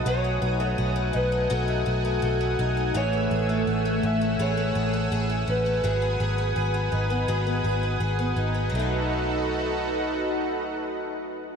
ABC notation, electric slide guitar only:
X:1
M:4/4
L:1/8
Q:1/4=83
K:Bmix
V:1 name="Electric slide guitar"
c3 B A2 A2 | c3 e c3 B- | B6 z2 | z8 |]